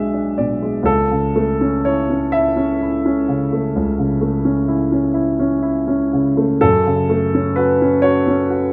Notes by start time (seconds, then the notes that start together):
Already playing: B1 B2 G#3 D4 E5
0.14 D4
0.38 B2 D5
0.62 G#3
0.83 C#2 A4
1.11 C#3
1.36 A3
1.61 C#4
1.85 E4 C#5
2.10 C#4
2.32 E4 E5
2.57 C#4
2.82 E4
3.06 C#4
3.28 C#3
3.53 A3
3.76 C#2
3.99 C#3
4.21 A3
4.45 C#4
4.68 E4
4.92 C#4
5.14 E4
5.39 C#4
5.62 E4
5.88 C#4
6.13 C#3
6.37 A3
6.61 F#2 A4
6.86 C#3
7.10 A3
7.35 C#4
7.56 F#4 B4
7.82 C#4
8.02 F#4 C#5
8.28 C#4
8.50 F#4